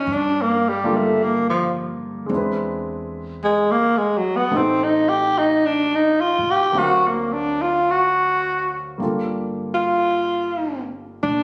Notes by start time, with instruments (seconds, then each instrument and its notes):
Already playing: tenor saxophone C#4, grand piano G#4
0.07 upright bass G2
0.13 tenor saxophone D4
0.42 tenor saxophone A#3
0.69 tenor saxophone G3
0.84 grand piano G3 A#3 D4 F4 A4
0.96 tenor saxophone A3
1.24 tenor saxophone A#3
1.50 tenor saxophone F3
2.26 upright bass E2, grand piano G#3 C4
2.31 grand piano D4 E4
2.37 grand piano B4
3.44 tenor saxophone G#3
3.71 tenor saxophone A#3
3.97 tenor saxophone G#3
4.18 tenor saxophone F#3
4.37 tenor saxophone B3
4.51 upright bass A1, grand piano A3 C4 D#4 G4
4.56 tenor saxophone C4, grand piano A4
4.83 tenor saxophone D#4
5.09 tenor saxophone G4
5.38 tenor saxophone D#4
5.66 tenor saxophone D4
5.95 tenor saxophone D#4
6.21 tenor saxophone F4
6.38 upright bass A2
6.51 tenor saxophone G4
6.72 upright bass D2, grand piano F#3 C4 D4 F5
6.78 tenor saxophone F#4, grand piano A#4
7.07 tenor saxophone A#3
7.33 tenor saxophone D4
7.62 tenor saxophone F4
7.91 tenor saxophone F#4
8.98 upright bass G1, grand piano G3 A#3 D4
9.02 grand piano F4 A4
9.74 tenor saxophone F4
11.23 upright bass A#1, tenor saxophone D4